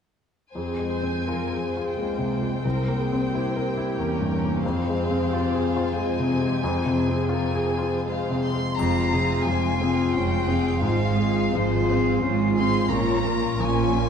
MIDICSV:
0, 0, Header, 1, 11, 480
1, 0, Start_track
1, 0, Key_signature, -4, "minor"
1, 0, Tempo, 726392
1, 359, Time_signature, 3, 2, 24, 8
1, 839, Tempo, 684151
1, 2279, Tempo, 658617
1, 4679, Tempo, 688863
1, 5159, Tempo, 735294
1, 6119, Tempo, 692042
1, 8519, Tempo, 677201
1, 9835, End_track
2, 0, Start_track
2, 0, Title_t, "Flute"
2, 0, Program_c, 0, 73
2, 6115, Note_on_c, 0, 96, 40
2, 6568, Note_off_c, 0, 96, 0
2, 6597, Note_on_c, 0, 96, 41
2, 7533, Note_off_c, 0, 96, 0
2, 7553, Note_on_c, 0, 96, 39
2, 8027, Note_off_c, 0, 96, 0
2, 8037, Note_on_c, 0, 96, 40
2, 8986, Note_off_c, 0, 96, 0
2, 8996, Note_on_c, 0, 85, 44
2, 9835, Note_off_c, 0, 85, 0
2, 9835, End_track
3, 0, Start_track
3, 0, Title_t, "Violin section"
3, 0, Program_c, 1, 48
3, 5882, Note_on_c, 1, 84, 51
3, 6101, Note_off_c, 1, 84, 0
3, 6118, Note_on_c, 1, 82, 58
3, 6598, Note_off_c, 1, 82, 0
3, 6600, Note_on_c, 1, 80, 51
3, 7067, Note_on_c, 1, 79, 52
3, 7075, Note_off_c, 1, 80, 0
3, 7547, Note_on_c, 1, 77, 52
3, 7549, Note_off_c, 1, 79, 0
3, 8024, Note_off_c, 1, 77, 0
3, 8042, Note_on_c, 1, 72, 50
3, 8522, Note_off_c, 1, 72, 0
3, 8765, Note_on_c, 1, 84, 56
3, 8990, Note_off_c, 1, 84, 0
3, 9006, Note_on_c, 1, 82, 61
3, 9486, Note_off_c, 1, 82, 0
3, 9493, Note_on_c, 1, 80, 59
3, 9835, Note_off_c, 1, 80, 0
3, 9835, End_track
4, 0, Start_track
4, 0, Title_t, "Violin section"
4, 0, Program_c, 2, 48
4, 349, Note_on_c, 2, 80, 30
4, 352, Note_on_c, 2, 72, 28
4, 809, Note_off_c, 2, 72, 0
4, 819, Note_on_c, 2, 72, 32
4, 1292, Note_off_c, 2, 80, 0
4, 1323, Note_on_c, 2, 79, 31
4, 1772, Note_off_c, 2, 72, 0
4, 1796, Note_on_c, 2, 72, 31
4, 2729, Note_off_c, 2, 72, 0
4, 2754, Note_on_c, 2, 70, 38
4, 3222, Note_on_c, 2, 77, 38
4, 3223, Note_on_c, 2, 72, 47
4, 3231, Note_off_c, 2, 79, 0
4, 3233, Note_off_c, 2, 70, 0
4, 4161, Note_off_c, 2, 77, 0
4, 4185, Note_on_c, 2, 80, 41
4, 4645, Note_off_c, 2, 72, 0
4, 4692, Note_on_c, 2, 72, 39
4, 5156, Note_off_c, 2, 72, 0
4, 5158, Note_off_c, 2, 80, 0
4, 5169, Note_on_c, 2, 80, 39
4, 5170, Note_on_c, 2, 70, 40
4, 5403, Note_off_c, 2, 70, 0
4, 5406, Note_on_c, 2, 72, 37
4, 5636, Note_off_c, 2, 80, 0
4, 5644, Note_off_c, 2, 72, 0
4, 5659, Note_on_c, 2, 72, 37
4, 5663, Note_on_c, 2, 77, 34
4, 5990, Note_off_c, 2, 72, 0
4, 5999, Note_off_c, 2, 77, 0
4, 6135, Note_on_c, 2, 72, 40
4, 6138, Note_on_c, 2, 65, 38
4, 6349, Note_off_c, 2, 72, 0
4, 6351, Note_off_c, 2, 65, 0
4, 6368, Note_on_c, 2, 77, 35
4, 6371, Note_on_c, 2, 68, 34
4, 6603, Note_off_c, 2, 77, 0
4, 6605, Note_off_c, 2, 68, 0
4, 6611, Note_on_c, 2, 72, 31
4, 6614, Note_on_c, 2, 65, 34
4, 6841, Note_on_c, 2, 68, 32
4, 6843, Note_on_c, 2, 77, 31
4, 6845, Note_off_c, 2, 72, 0
4, 6846, Note_off_c, 2, 65, 0
4, 7076, Note_off_c, 2, 68, 0
4, 7077, Note_off_c, 2, 77, 0
4, 7085, Note_on_c, 2, 65, 34
4, 7085, Note_on_c, 2, 72, 34
4, 7301, Note_off_c, 2, 65, 0
4, 7301, Note_off_c, 2, 72, 0
4, 7315, Note_on_c, 2, 68, 35
4, 7315, Note_on_c, 2, 77, 33
4, 7546, Note_on_c, 2, 72, 40
4, 7549, Note_on_c, 2, 65, 34
4, 7554, Note_off_c, 2, 68, 0
4, 7554, Note_off_c, 2, 77, 0
4, 7773, Note_off_c, 2, 72, 0
4, 7774, Note_off_c, 2, 65, 0
4, 7780, Note_on_c, 2, 77, 34
4, 7784, Note_on_c, 2, 68, 33
4, 8030, Note_off_c, 2, 77, 0
4, 8032, Note_off_c, 2, 68, 0
4, 8035, Note_on_c, 2, 65, 34
4, 8041, Note_on_c, 2, 72, 35
4, 8269, Note_on_c, 2, 68, 33
4, 8271, Note_on_c, 2, 77, 34
4, 8279, Note_off_c, 2, 65, 0
4, 8282, Note_off_c, 2, 72, 0
4, 8504, Note_on_c, 2, 65, 38
4, 8505, Note_on_c, 2, 72, 33
4, 8514, Note_off_c, 2, 68, 0
4, 8515, Note_off_c, 2, 77, 0
4, 8737, Note_off_c, 2, 65, 0
4, 8737, Note_off_c, 2, 72, 0
4, 8759, Note_on_c, 2, 68, 33
4, 8766, Note_on_c, 2, 77, 33
4, 9004, Note_off_c, 2, 68, 0
4, 9007, Note_off_c, 2, 77, 0
4, 9013, Note_on_c, 2, 70, 34
4, 9013, Note_on_c, 2, 73, 39
4, 9234, Note_off_c, 2, 73, 0
4, 9235, Note_off_c, 2, 70, 0
4, 9244, Note_on_c, 2, 65, 37
4, 9247, Note_on_c, 2, 70, 34
4, 9467, Note_off_c, 2, 70, 0
4, 9475, Note_on_c, 2, 70, 38
4, 9484, Note_off_c, 2, 65, 0
4, 9484, Note_on_c, 2, 73, 35
4, 9716, Note_off_c, 2, 70, 0
4, 9721, Note_off_c, 2, 73, 0
4, 9724, Note_on_c, 2, 65, 37
4, 9725, Note_on_c, 2, 70, 35
4, 9835, Note_off_c, 2, 65, 0
4, 9835, Note_off_c, 2, 70, 0
4, 9835, End_track
5, 0, Start_track
5, 0, Title_t, "Clarinet"
5, 0, Program_c, 3, 71
5, 6126, Note_on_c, 3, 65, 40
5, 6574, Note_off_c, 3, 65, 0
5, 6605, Note_on_c, 3, 65, 43
5, 7537, Note_off_c, 3, 65, 0
5, 7561, Note_on_c, 3, 65, 37
5, 8031, Note_off_c, 3, 65, 0
5, 8035, Note_on_c, 3, 65, 40
5, 8985, Note_off_c, 3, 65, 0
5, 9006, Note_on_c, 3, 65, 43
5, 9835, Note_off_c, 3, 65, 0
5, 9835, End_track
6, 0, Start_track
6, 0, Title_t, "French horn section"
6, 0, Program_c, 4, 60
6, 6119, Note_on_c, 4, 60, 37
6, 6121, Note_on_c, 4, 65, 40
6, 8977, Note_off_c, 4, 60, 0
6, 8978, Note_off_c, 4, 65, 0
6, 9002, Note_on_c, 4, 61, 37
6, 9005, Note_on_c, 4, 65, 37
6, 9835, Note_off_c, 4, 61, 0
6, 9835, Note_off_c, 4, 65, 0
6, 9835, End_track
7, 0, Start_track
7, 0, Title_t, "Viola section"
7, 0, Program_c, 5, 48
7, 361, Note_on_c, 5, 60, 30
7, 363, Note_on_c, 5, 68, 31
7, 586, Note_off_c, 5, 68, 0
7, 602, Note_on_c, 5, 72, 29
7, 814, Note_off_c, 5, 60, 0
7, 838, Note_on_c, 5, 60, 31
7, 838, Note_on_c, 5, 70, 33
7, 840, Note_off_c, 5, 72, 0
7, 1085, Note_off_c, 5, 70, 0
7, 1087, Note_on_c, 5, 68, 35
7, 1315, Note_off_c, 5, 60, 0
7, 1321, Note_off_c, 5, 68, 0
7, 1326, Note_on_c, 5, 65, 31
7, 1330, Note_on_c, 5, 58, 32
7, 1803, Note_off_c, 5, 65, 0
7, 1804, Note_on_c, 5, 70, 34
7, 1805, Note_off_c, 5, 58, 0
7, 1808, Note_on_c, 5, 60, 33
7, 2044, Note_off_c, 5, 70, 0
7, 2046, Note_on_c, 5, 68, 34
7, 2274, Note_on_c, 5, 67, 36
7, 2280, Note_off_c, 5, 68, 0
7, 2513, Note_off_c, 5, 67, 0
7, 2524, Note_on_c, 5, 67, 40
7, 2736, Note_off_c, 5, 60, 0
7, 2747, Note_on_c, 5, 61, 39
7, 2980, Note_off_c, 5, 61, 0
7, 2989, Note_on_c, 5, 61, 41
7, 3222, Note_off_c, 5, 67, 0
7, 3226, Note_off_c, 5, 61, 0
7, 3231, Note_on_c, 5, 68, 40
7, 3232, Note_on_c, 5, 60, 46
7, 3462, Note_off_c, 5, 68, 0
7, 3471, Note_on_c, 5, 68, 44
7, 3699, Note_off_c, 5, 68, 0
7, 3707, Note_on_c, 5, 67, 47
7, 3938, Note_off_c, 5, 67, 0
7, 3939, Note_on_c, 5, 65, 48
7, 4174, Note_off_c, 5, 60, 0
7, 4182, Note_on_c, 5, 60, 43
7, 4185, Note_off_c, 5, 65, 0
7, 4186, Note_on_c, 5, 68, 47
7, 4433, Note_off_c, 5, 68, 0
7, 4439, Note_on_c, 5, 67, 43
7, 4667, Note_off_c, 5, 60, 0
7, 4677, Note_off_c, 5, 67, 0
7, 4682, Note_on_c, 5, 65, 40
7, 4685, Note_on_c, 5, 60, 39
7, 4914, Note_on_c, 5, 68, 46
7, 4917, Note_off_c, 5, 65, 0
7, 5152, Note_off_c, 5, 60, 0
7, 5160, Note_on_c, 5, 60, 42
7, 5631, Note_off_c, 5, 60, 0
7, 5636, Note_off_c, 5, 68, 0
7, 5640, Note_on_c, 5, 60, 36
7, 5644, Note_on_c, 5, 68, 38
7, 5980, Note_off_c, 5, 60, 0
7, 5982, Note_off_c, 5, 68, 0
7, 6123, Note_on_c, 5, 65, 38
7, 6130, Note_on_c, 5, 56, 34
7, 6343, Note_off_c, 5, 65, 0
7, 6346, Note_off_c, 5, 56, 0
7, 6363, Note_on_c, 5, 68, 38
7, 6367, Note_on_c, 5, 60, 35
7, 6601, Note_off_c, 5, 68, 0
7, 6601, Note_on_c, 5, 56, 34
7, 6603, Note_off_c, 5, 60, 0
7, 6605, Note_on_c, 5, 65, 36
7, 6839, Note_off_c, 5, 56, 0
7, 6841, Note_off_c, 5, 65, 0
7, 6841, Note_on_c, 5, 68, 33
7, 6846, Note_on_c, 5, 60, 37
7, 7076, Note_off_c, 5, 68, 0
7, 7078, Note_off_c, 5, 60, 0
7, 7084, Note_on_c, 5, 56, 38
7, 7087, Note_on_c, 5, 65, 37
7, 7301, Note_off_c, 5, 56, 0
7, 7302, Note_off_c, 5, 65, 0
7, 7321, Note_on_c, 5, 60, 34
7, 7323, Note_on_c, 5, 68, 34
7, 7557, Note_off_c, 5, 60, 0
7, 7557, Note_on_c, 5, 56, 36
7, 7557, Note_on_c, 5, 65, 36
7, 7558, Note_off_c, 5, 68, 0
7, 7779, Note_off_c, 5, 56, 0
7, 7779, Note_off_c, 5, 65, 0
7, 7801, Note_on_c, 5, 60, 36
7, 7801, Note_on_c, 5, 68, 39
7, 8040, Note_off_c, 5, 60, 0
7, 8040, Note_off_c, 5, 68, 0
7, 8041, Note_on_c, 5, 56, 38
7, 8043, Note_on_c, 5, 65, 35
7, 8282, Note_off_c, 5, 56, 0
7, 8283, Note_off_c, 5, 65, 0
7, 8284, Note_on_c, 5, 60, 36
7, 8288, Note_on_c, 5, 68, 38
7, 8522, Note_off_c, 5, 60, 0
7, 8523, Note_off_c, 5, 68, 0
7, 8533, Note_on_c, 5, 56, 36
7, 8534, Note_on_c, 5, 65, 35
7, 8752, Note_off_c, 5, 56, 0
7, 8753, Note_off_c, 5, 65, 0
7, 8774, Note_on_c, 5, 60, 34
7, 8774, Note_on_c, 5, 68, 33
7, 9011, Note_off_c, 5, 60, 0
7, 9011, Note_off_c, 5, 68, 0
7, 9014, Note_on_c, 5, 53, 39
7, 9015, Note_on_c, 5, 61, 37
7, 9235, Note_off_c, 5, 53, 0
7, 9235, Note_off_c, 5, 61, 0
7, 9255, Note_on_c, 5, 58, 36
7, 9259, Note_off_c, 5, 58, 0
7, 9259, Note_on_c, 5, 58, 34
7, 9491, Note_off_c, 5, 58, 0
7, 9499, Note_on_c, 5, 53, 38
7, 9500, Note_on_c, 5, 61, 37
7, 9728, Note_off_c, 5, 53, 0
7, 9729, Note_off_c, 5, 61, 0
7, 9735, Note_on_c, 5, 58, 35
7, 9738, Note_off_c, 5, 58, 0
7, 9738, Note_on_c, 5, 58, 39
7, 9835, Note_off_c, 5, 58, 0
7, 9835, End_track
8, 0, Start_track
8, 0, Title_t, "Grand piano"
8, 0, Program_c, 6, 0
8, 365, Note_on_c, 6, 41, 30
8, 474, Control_c, 6, 64, 127
8, 521, Note_on_c, 6, 56, 30
8, 680, Note_on_c, 6, 60, 25
8, 777, Note_off_c, 6, 56, 0
8, 849, Note_on_c, 6, 65, 31
8, 938, Note_off_c, 6, 60, 0
8, 1024, Note_on_c, 6, 68, 29
8, 1107, Note_off_c, 6, 65, 0
8, 1189, Note_on_c, 6, 65, 26
8, 1271, Note_off_c, 6, 68, 0
8, 1300, Note_off_c, 6, 41, 0
8, 1331, Note_on_c, 6, 56, 29
8, 1431, Note_off_c, 6, 65, 0
8, 1480, Note_on_c, 6, 48, 29
8, 1581, Note_off_c, 6, 56, 0
8, 1639, Note_on_c, 6, 56, 28
8, 1737, Note_off_c, 6, 48, 0
8, 1801, Note_off_c, 6, 56, 0
8, 1807, Note_on_c, 6, 36, 37
8, 1817, Control_c, 6, 64, 0
8, 1919, Control_c, 6, 64, 127
8, 1963, Note_on_c, 6, 58, 32
8, 2138, Note_on_c, 6, 60, 30
8, 2216, Note_off_c, 6, 58, 0
8, 2295, Note_on_c, 6, 64, 33
8, 2382, Note_off_c, 6, 60, 0
8, 2454, Note_on_c, 6, 70, 35
8, 2540, Note_off_c, 6, 64, 0
8, 2608, Note_on_c, 6, 64, 36
8, 2696, Note_off_c, 6, 70, 0
8, 2772, Note_on_c, 6, 58, 38
8, 2854, Note_off_c, 6, 64, 0
8, 2926, Note_on_c, 6, 43, 32
8, 3018, Note_off_c, 6, 58, 0
8, 3092, Note_on_c, 6, 58, 34
8, 3176, Note_off_c, 6, 43, 0
8, 3206, Note_off_c, 6, 36, 0
8, 3242, Note_off_c, 6, 58, 0
8, 3246, Control_c, 6, 64, 0
8, 3253, Note_on_c, 6, 41, 44
8, 3348, Control_c, 6, 64, 127
8, 3414, Note_on_c, 6, 56, 38
8, 3580, Note_on_c, 6, 60, 36
8, 3653, Note_off_c, 6, 56, 0
8, 3743, Note_on_c, 6, 65, 42
8, 3814, Note_off_c, 6, 60, 0
8, 3901, Note_on_c, 6, 68, 43
8, 3976, Note_off_c, 6, 65, 0
8, 4060, Note_on_c, 6, 65, 41
8, 4140, Note_off_c, 6, 68, 0
8, 4202, Note_on_c, 6, 56, 39
8, 4304, Note_off_c, 6, 65, 0
8, 4370, Note_on_c, 6, 48, 43
8, 4457, Note_off_c, 6, 56, 0
8, 4538, Note_on_c, 6, 56, 35
8, 4622, Note_off_c, 6, 48, 0
8, 4659, Note_off_c, 6, 41, 0
8, 4689, Control_c, 6, 64, 0
8, 4695, Note_on_c, 6, 41, 47
8, 4784, Note_off_c, 6, 56, 0
8, 4808, Control_c, 6, 64, 127
8, 4846, Note_on_c, 6, 48, 43
8, 4999, Note_on_c, 6, 60, 35
8, 5098, Note_off_c, 6, 48, 0
8, 5149, Note_on_c, 6, 65, 43
8, 5254, Note_off_c, 6, 60, 0
8, 5313, Note_on_c, 6, 68, 40
8, 5409, Note_off_c, 6, 65, 0
8, 5474, Note_on_c, 6, 65, 34
8, 5574, Note_off_c, 6, 68, 0
8, 5645, Note_on_c, 6, 56, 36
8, 5735, Note_off_c, 6, 65, 0
8, 5811, Note_on_c, 6, 48, 32
8, 5903, Note_off_c, 6, 56, 0
8, 5969, Note_on_c, 6, 56, 29
8, 6063, Note_off_c, 6, 48, 0
8, 6100, Note_off_c, 6, 41, 0
8, 6121, Note_off_c, 6, 56, 0
8, 6129, Note_on_c, 6, 41, 47
8, 6132, Control_c, 6, 64, 0
8, 6258, Control_c, 6, 64, 127
8, 6372, Note_on_c, 6, 48, 35
8, 6595, Note_on_c, 6, 53, 36
8, 6750, Note_off_c, 6, 48, 0
8, 6836, Note_on_c, 6, 60, 35
8, 6979, Note_off_c, 6, 53, 0
8, 7068, Note_on_c, 6, 61, 30
8, 7215, Note_off_c, 6, 60, 0
8, 7302, Note_on_c, 6, 60, 32
8, 7309, Note_off_c, 6, 61, 0
8, 7530, Note_off_c, 6, 41, 0
8, 7533, Note_on_c, 6, 44, 44
8, 7547, Note_off_c, 6, 60, 0
8, 7565, Control_c, 6, 64, 0
8, 7694, Control_c, 6, 64, 127
8, 7797, Note_on_c, 6, 56, 35
8, 8043, Note_on_c, 6, 53, 37
8, 8184, Note_off_c, 6, 56, 0
8, 8284, Note_on_c, 6, 60, 36
8, 8427, Note_off_c, 6, 53, 0
8, 8509, Note_on_c, 6, 61, 30
8, 8667, Note_off_c, 6, 60, 0
8, 8757, Note_off_c, 6, 61, 0
8, 8757, Note_on_c, 6, 60, 35
8, 8967, Note_off_c, 6, 44, 0
8, 8986, Note_on_c, 6, 46, 47
8, 9003, Note_off_c, 6, 60, 0
8, 9017, Control_c, 6, 64, 0
8, 9134, Control_c, 6, 64, 127
8, 9238, Note_on_c, 6, 58, 37
8, 9486, Note_on_c, 6, 53, 42
8, 9622, Note_off_c, 6, 58, 0
8, 9719, Note_on_c, 6, 61, 34
8, 9835, Note_off_c, 6, 46, 0
8, 9835, Note_off_c, 6, 53, 0
8, 9835, Note_off_c, 6, 61, 0
8, 9835, End_track
9, 0, Start_track
9, 0, Title_t, "Cello section"
9, 0, Program_c, 7, 48
9, 357, Note_on_c, 7, 41, 30
9, 1296, Note_off_c, 7, 41, 0
9, 1330, Note_on_c, 7, 37, 31
9, 1805, Note_off_c, 7, 37, 0
9, 1805, Note_on_c, 7, 36, 36
9, 2734, Note_off_c, 7, 36, 0
9, 2758, Note_on_c, 7, 40, 37
9, 3236, Note_off_c, 7, 40, 0
9, 3240, Note_on_c, 7, 41, 45
9, 5991, Note_off_c, 7, 41, 0
9, 6124, Note_on_c, 7, 41, 46
9, 6543, Note_off_c, 7, 41, 0
9, 6606, Note_on_c, 7, 41, 41
9, 7023, Note_off_c, 7, 41, 0
9, 7085, Note_on_c, 7, 41, 41
9, 7501, Note_off_c, 7, 41, 0
9, 7563, Note_on_c, 7, 44, 47
9, 7984, Note_off_c, 7, 44, 0
9, 8049, Note_on_c, 7, 44, 43
9, 8469, Note_off_c, 7, 44, 0
9, 8533, Note_on_c, 7, 44, 45
9, 8955, Note_off_c, 7, 44, 0
9, 9010, Note_on_c, 7, 46, 47
9, 9432, Note_off_c, 7, 46, 0
9, 9493, Note_on_c, 7, 46, 50
9, 9835, Note_off_c, 7, 46, 0
9, 9835, End_track
10, 0, Start_track
10, 0, Title_t, "Double bass section"
10, 0, Program_c, 8, 48
10, 6122, Note_on_c, 8, 29, 43
10, 6543, Note_off_c, 8, 29, 0
10, 6597, Note_on_c, 8, 29, 47
10, 7018, Note_off_c, 8, 29, 0
10, 7078, Note_on_c, 8, 29, 44
10, 7497, Note_off_c, 8, 29, 0
10, 7550, Note_on_c, 8, 32, 43
10, 7978, Note_off_c, 8, 32, 0
10, 8037, Note_on_c, 8, 32, 52
10, 8463, Note_off_c, 8, 32, 0
10, 8518, Note_on_c, 8, 32, 51
10, 8947, Note_off_c, 8, 32, 0
10, 9013, Note_on_c, 8, 34, 45
10, 9433, Note_off_c, 8, 34, 0
10, 9489, Note_on_c, 8, 34, 51
10, 9835, Note_off_c, 8, 34, 0
10, 9835, End_track
11, 0, Start_track
11, 0, Title_t, "Drums"
11, 6131, Note_on_c, 9, 81, 26
11, 6200, Note_off_c, 9, 81, 0
11, 9835, End_track
0, 0, End_of_file